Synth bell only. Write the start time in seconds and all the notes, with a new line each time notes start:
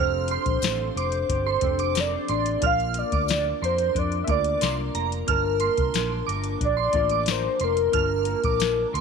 Already playing: F6
0.31 C6
0.97 D6
1.47 C6
1.80 D6
2.29 C6
2.63 F6
3.13 D6
3.63 C6
4.29 D6
4.62 C6
4.95 A#5
5.28 F6
5.60 C6
6.27 D6
6.77 C6
7.11 D6
7.61 C6
7.94 F6
8.45 D6
8.94 C6